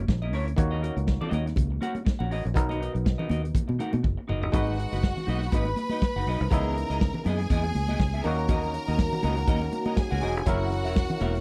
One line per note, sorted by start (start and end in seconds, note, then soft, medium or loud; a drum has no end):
0.00 0.28 F#3 medium
0.00 0.29 C#4 medium
0.00 0.29 E4 medium
0.00 0.30 A#4 medium
0.08 0.33 A#1 loud
0.08 muted clean electric guitar stroke soft
0.08 kick loud
0.08 snare loud
0.22 0.32 C#4 soft
0.22 0.32 E4 medium
0.22 0.33 A#4 soft
0.22 0.32 D#5 medium
0.22 muted conga soft
0.33 0.53 D2 medium
0.33 0.49 C#4 medium
0.33 0.47 E4 medium
0.33 0.46 A#4 medium
0.33 0.46 C#5 medium
0.33 open hi-hat medium
0.47 muted clean electric guitar stroke soft
0.47 closed hi-hat soft
0.56 0.89 D#2 loud
0.56 2.51 D#3 medium
0.56 2.52 A#3 medium
0.56 2.52 F#4 medium
0.56 2.53 C#5 medium
0.56 muted clean electric guitar stroke soft
0.56 kick loud
0.56 closed hi-hat medium
0.56 muted conga soft
0.56 low conga medium
0.71 0.80 C#4 medium
0.71 0.81 F#4 medium
0.71 0.82 A#4 medium
0.71 0.82 D#5 medium
0.81 0.95 C#4 medium
0.81 0.96 F#4 medium
0.81 0.96 A#4 medium
0.81 0.95 D#5 medium
0.81 closed hi-hat medium
0.96 1.17 C#2 medium
0.96 muted clean electric guitar stroke soft
0.96 closed hi-hat soft
1.07 muted clean electric guitar stroke soft
1.07 kick loud
1.07 snare loud
1.21 1.31 C#4 medium
1.21 1.32 F#4 medium
1.21 1.33 A#4 medium
1.21 1.33 D#5 medium
1.21 low conga medium
1.31 1.52 D#2 medium
1.31 1.45 C#4 medium
1.31 1.46 F#4 medium
1.31 1.46 A#4 medium
1.31 1.45 D#5 medium
1.31 closed hi-hat medium
1.31 high conga medium
1.46 muted clean electric guitar stroke soft
1.46 snare soft
1.46 closed hi-hat soft
1.56 1.77 C#2 medium
1.56 kick loud
1.56 closed hi-hat medium
1.56 muted conga soft
1.56 high conga medium
1.56 low conga medium
1.71 muted clean electric guitar stroke soft
1.81 1.97 C#4 medium
1.81 1.95 F#4 medium
1.81 1.94 A#4 medium
1.81 1.95 F#5 medium
1.81 closed hi-hat medium
1.81 high conga medium
1.95 muted clean electric guitar stroke soft
1.95 closed hi-hat soft
1.95 high conga medium
2.05 muted clean electric guitar stroke medium
2.05 kick loud
2.05 snare loud
2.19 2.31 A#1 medium
2.19 2.29 C#4 medium
2.19 2.30 F#4 medium
2.19 2.31 A#4 medium
2.19 2.30 F#5 medium
2.19 muted conga soft
2.31 2.43 A1 medium
2.31 2.47 C#4 medium
2.31 2.45 F#4 medium
2.31 2.45 A#4 medium
2.31 2.44 D#5 medium
2.31 open hi-hat medium
2.45 2.56 A#1 medium
2.45 muted clean electric guitar stroke soft
2.45 closed hi-hat soft
2.54 2.88 B1 loud
2.54 4.49 B2 medium
2.54 4.50 B3 medium
2.54 4.50 D#4 medium
2.54 4.50 A#4 medium
2.54 muted clean electric guitar stroke soft
2.54 kick loud
2.54 closed hi-hat medium
2.54 low conga medium
2.69 2.79 D#4 medium
2.69 2.79 F#4 medium
2.69 2.80 A#4 medium
2.69 2.81 D#5 medium
2.69 closed hi-hat soft
2.69 muted conga soft
2.80 2.94 D#4 medium
2.80 2.94 F#4 medium
2.80 2.93 A#4 medium
2.80 2.92 D#5 medium
2.80 closed hi-hat medium
2.94 3.15 B1 medium
2.94 muted clean electric guitar stroke soft
2.94 closed hi-hat soft
3.05 muted clean electric guitar stroke soft
3.05 kick loud
3.05 snare loud
3.18 3.28 D#4 medium
3.18 3.28 F#4 medium
3.18 3.29 A#4 medium
3.18 3.30 D#5 medium
3.18 low conga medium
3.29 3.50 D#2 medium
3.29 3.43 D#4 medium
3.29 3.43 F#4 medium
3.29 3.43 A#4 medium
3.29 3.42 D#5 medium
3.29 closed hi-hat medium
3.29 high conga medium
3.43 muted clean electric guitar stroke soft
3.43 closed hi-hat soft
3.55 kick loud
3.55 closed hi-hat medium
3.55 high conga medium
3.55 low conga medium
3.68 3.78 B2 medium
3.68 muted clean electric guitar stroke soft
3.68 muted conga soft
3.79 3.96 D#4 medium
3.79 3.92 F#4 medium
3.79 3.92 A#4 medium
3.79 3.92 F#5 medium
3.79 closed hi-hat medium
3.79 high conga medium
3.92 4.02 B2 medium
3.92 muted clean electric guitar stroke soft
3.92 closed hi-hat soft
3.92 high conga medium
4.03 4.16 F#1 medium
4.03 muted clean electric guitar stroke soft
4.03 kick loud
4.03 high tom soft
4.17 muted clean electric guitar stroke soft
4.28 4.43 F#1 medium
4.28 4.43 D#4 medium
4.28 4.42 F#4 medium
4.28 4.42 A#4 medium
4.28 4.40 D#5 medium
4.28 mid tom medium
4.42 4.52 G1 medium
4.42 4.51 D#4 soft
4.42 4.52 F#4 medium
4.42 4.53 A#4 soft
4.42 4.53 D#5 medium
4.42 floor tom medium
4.52 4.85 G#1 loud
4.52 6.47 G#3 medium
4.52 4.76 D#4 medium
4.52 6.47 D#4 medium
4.52 4.77 F#4 medium
4.52 5.51 F#4 medium
4.52 6.48 F#4 medium
4.52 4.77 B4 medium
4.52 6.49 B4 medium
4.52 4.77 D#5 medium
4.52 5.51 F#5 medium
4.52 kick loud
4.52 closed hi-hat medium
4.52 muted conga soft
4.52 low conga medium
4.67 muted conga soft
4.78 muted clean electric guitar stroke soft
4.78 closed hi-hat medium
4.91 5.13 F#1 medium
4.91 5.02 D#4 soft
4.91 5.02 F#4 soft
4.91 5.03 B4 soft
4.91 5.02 D#5 medium
4.91 closed hi-hat soft
5.03 muted clean electric guitar stroke soft
5.03 kick loud
5.03 snare loud
5.17 muted clean electric guitar stroke soft
5.17 low conga medium
5.27 5.48 B1 medium
5.27 5.44 D#4 medium
5.27 5.42 F#4 medium
5.27 5.41 B4 medium
5.27 5.40 D#5 medium
5.27 closed hi-hat medium
5.27 high conga medium
5.42 muted clean electric guitar stroke soft
5.42 snare soft
5.42 closed hi-hat medium
5.52 5.73 G#1 medium
5.52 5.69 D#4 medium
5.52 5.66 F#4 medium
5.52 6.50 B4 medium
5.52 5.66 B4 medium
5.52 5.65 D#5 medium
5.52 6.50 B5 medium
5.52 kick loud
5.52 closed hi-hat medium
5.52 muted conga soft
5.52 high conga medium
5.65 muted clean electric guitar stroke soft
5.65 muted conga soft
5.76 muted clean electric guitar stroke soft
5.76 closed hi-hat medium
5.76 high conga medium
5.90 6.01 D#4 medium
5.90 6.01 F#4 medium
5.90 6.01 B4 medium
5.90 6.02 D#5 medium
5.90 closed hi-hat soft
5.90 high conga medium
6.02 muted clean electric guitar stroke soft
6.02 kick loud
6.02 snare loud
6.16 6.25 F#1 medium
6.16 6.26 D#4 medium
6.16 6.27 F#4 soft
6.16 6.27 B4 medium
6.16 6.27 F#5 medium
6.27 6.38 B1 medium
6.27 6.43 D#4 medium
6.27 6.41 F#4 medium
6.27 6.41 B4 medium
6.27 6.40 D#5 medium
6.27 open hi-hat medium
6.41 6.50 C2 loud
6.41 muted clean electric guitar stroke soft
6.41 closed hi-hat soft
6.50 6.83 C#2 loud
6.50 8.21 C#3 medium
6.50 8.21 B3 medium
6.50 6.75 B3 medium
6.50 8.22 D#4 medium
6.50 6.75 E4 medium
6.50 8.22 E4 medium
6.50 6.75 G#4 medium
6.50 7.25 A#4 medium
6.50 6.76 D#5 loud
6.50 7.24 A#5 medium
6.50 kick loud
6.50 closed hi-hat medium
6.50 muted conga soft
6.50 low conga medium
6.64 muted conga soft
6.76 muted clean electric guitar stroke soft
6.76 closed hi-hat medium
6.90 7.10 C#2 medium
6.90 7.00 B3 medium
6.90 7.00 E4 medium
6.90 7.01 G#4 medium
6.90 7.00 D#5 medium
6.90 closed hi-hat soft
7.01 muted clean electric guitar stroke soft
7.01 kick loud
7.01 snare loud
7.14 muted clean electric guitar stroke soft
7.14 muted conga soft
7.14 low conga medium
7.25 7.46 F#2 loud
7.25 7.42 B3 medium
7.25 7.40 E4 medium
7.25 8.23 G#4 medium
7.25 7.39 G#4 medium
7.25 7.38 D#5 medium
7.25 8.23 G#5 medium
7.25 closed hi-hat medium
7.25 high conga medium
7.40 muted clean electric guitar stroke soft
7.40 snare soft
7.40 closed hi-hat soft
7.50 7.71 E2 medium
7.50 7.67 B3 medium
7.50 7.65 E4 medium
7.50 7.64 G#4 medium
7.50 7.63 D#5 loud
7.50 kick loud
7.50 closed hi-hat medium
7.50 high conga medium
7.64 muted clean electric guitar stroke soft
7.64 closed hi-hat soft
7.64 muted conga soft
7.75 7.95 C#2 medium
7.75 muted clean electric guitar stroke soft
7.75 closed hi-hat medium
7.75 high conga medium
7.88 7.99 B3 medium
7.88 7.99 E4 medium
7.88 7.99 G#4 medium
7.88 7.99 D#5 medium
7.88 closed hi-hat soft
7.88 high conga medium
8.00 8.20 C#2 medium
8.00 muted clean electric guitar stroke soft
8.00 kick loud
8.00 snare loud
8.00 muted conga soft
8.14 8.24 B3 medium
8.14 8.25 E4 medium
8.14 8.24 G#4 medium
8.14 8.24 E5 medium
8.24 8.77 D#2 medium
8.24 10.18 D#3 medium
8.24 10.19 A#3 medium
8.24 8.41 C#4 medium
8.24 10.19 C#4 medium
8.24 8.38 F#4 medium
8.24 10.20 F#4 medium
8.24 9.95 A#4 medium
8.24 8.37 A#4 medium
8.24 8.37 D#5 medium
8.24 9.94 A#5 medium
8.24 open hi-hat medium
8.38 muted clean electric guitar stroke soft
8.38 closed hi-hat soft
8.48 10.45 D#3 medium
8.48 10.45 A#3 medium
8.48 11.41 C#4 medium
8.48 8.72 C#4 loud
8.48 10.45 F#4 medium
8.48 8.72 F#4 medium
8.48 8.73 A#4 medium
8.48 8.73 D#5 medium
8.48 kick loud
8.48 closed hi-hat medium
8.48 muted conga soft
8.48 low conga medium
8.63 closed hi-hat soft
8.74 muted clean electric guitar stroke soft
8.74 closed hi-hat medium
8.87 9.08 D#2 medium
8.87 8.97 C#4 medium
8.87 8.98 F#4 medium
8.87 8.98 A#4 medium
8.87 8.98 D#5 medium
8.87 closed hi-hat soft
8.98 muted clean electric guitar stroke soft
8.98 kick loud
8.98 snare loud
8.98 muted conga soft
9.12 muted clean electric guitar stroke soft
9.12 low conga medium
9.23 9.44 C#2 loud
9.23 9.39 C#4 medium
9.23 9.37 F#4 medium
9.23 9.36 A#4 medium
9.23 9.35 D#5 loud
9.23 closed hi-hat medium
9.23 high conga medium
9.36 muted clean electric guitar stroke soft
9.36 closed hi-hat soft
9.47 9.68 D#2 medium
9.47 9.64 C#4 medium
9.47 9.61 F#4 medium
9.47 9.61 A#4 medium
9.47 9.60 D#5 medium
9.47 kick loud
9.47 closed hi-hat medium
9.47 muted conga soft
9.47 high conga medium
9.61 muted clean electric guitar stroke soft
9.61 muted conga soft
9.72 muted clean electric guitar stroke soft
9.72 closed hi-hat medium
9.72 high conga medium
9.85 9.95 C#4 medium
9.85 9.96 F#4 medium
9.85 9.96 A#4 medium
9.85 9.97 D#5 medium
9.85 closed hi-hat soft
9.85 high conga medium
9.96 10.46 G#4 medium
9.96 10.46 G#5 medium
9.96 muted clean electric guitar stroke soft
9.96 kick loud
9.96 snare loud
9.96 muted conga soft
10.11 10.21 C#2 medium
10.11 10.20 C#4 medium
10.11 10.21 F#4 medium
10.11 10.22 A#4 medium
10.11 10.22 F#5 medium
10.21 10.37 E1 medium
10.21 10.38 C#4 loud
10.21 10.36 F#4 medium
10.21 10.36 A#4 medium
10.21 10.35 D#5 medium
10.21 open hi-hat medium
10.36 10.45 F1 medium
10.36 muted clean electric guitar stroke soft
10.36 closed hi-hat soft
10.46 10.85 F#1 loud
10.46 11.41 F#3 medium
10.46 10.70 C#4 medium
10.46 11.41 C#4 medium
10.46 11.41 E4 medium
10.46 10.70 F#4 medium
10.46 11.41 F#4 medium
10.46 11.41 A#4 medium
10.46 10.70 A#4 medium
10.46 11.41 A#4 medium
10.46 10.71 E5 medium
10.46 11.41 F#5 medium
10.46 kick loud
10.46 closed hi-hat loud
10.46 muted conga soft
10.46 low conga medium
10.71 muted clean electric guitar stroke soft
10.71 closed hi-hat medium
10.85 11.06 E1 medium
10.85 10.94 C#4 medium
10.85 10.95 F#4 medium
10.85 10.95 A#4 medium
10.85 10.96 E5 medium
10.85 closed hi-hat soft
10.95 muted clean electric guitar stroke soft
10.95 kick loud
10.95 snare loud
11.08 muted clean electric guitar stroke soft
11.08 closed hi-hat soft
11.08 low conga medium
11.20 11.41 E1 loud
11.20 11.37 C#4 medium
11.20 11.34 F#4 medium
11.20 11.33 A#4 medium
11.20 11.33 E5 loud
11.20 closed hi-hat medium
11.20 high conga medium
11.34 muted clean electric guitar stroke soft
11.34 snare soft
11.34 closed hi-hat soft